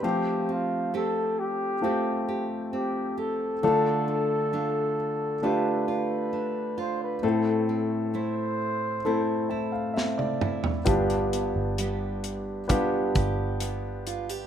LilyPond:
<<
  \new Staff \with { instrumentName = "Flugelhorn" } { \time 4/4 \key a \minor \tempo 4 = 66 g'8 f'8 a'8 g'4~ g'16 r16 g'8 a'8~ | a'2 b'8 b'4 c''16 b'16 | a'8. r16 c''2 r4 | r1 | }
  \new Staff \with { instrumentName = "Grand piano" } { \time 4/4 \key a \minor << { r1 | d4. r2 r8 | a,4. r4 a''16 f''16 e''16 d''8. | g,4. r2 r8 | } \\ { <a c' f' g'>2 <a c' f' g'>2 | <a d' f' a'>2 <a d' f' g'>2 | <a c' e' a'>2 <a c' e' a'>2 | <b d' f' g'>2 <b d' f' g'>2 | } >> }
  \new Staff \with { instrumentName = "Nylon-string guitar" } { \time 4/4 \key a \minor f8 c'8 <a c' g'>4 <a c' g'>8 g'8 c'8 g'8 | d8 d'8 <a d' f'>4 <a d' f'>8 f'8 d'8 f'8 | a,8 c'8 <a c' e'>4 <a c' e'>8 e'8 c'8 e'8 | g,8 b8 <g b g'>4 <g b g'>8 g'8 b8 f'16 g'16 | }
  \new Staff \with { instrumentName = "Fingered electric bass" } { \clef bass \time 4/4 \key a \minor r1 | r1 | r1 | g,,8. g,,4.~ g,,16 g,,4. | }
  \new DrumStaff \with { instrumentName = "Drums" } \drummode { \time 4/4 r4 r4 r4 r4 | r4 r4 r4 r4 | r4 r4 r4 sn16 tommh16 toml16 tomfh16 | <hh bd>16 hh16 hh8 hh8 hh8 <hh bd>8 <hh bd>8 hh8 hh16 hh16 | }
>>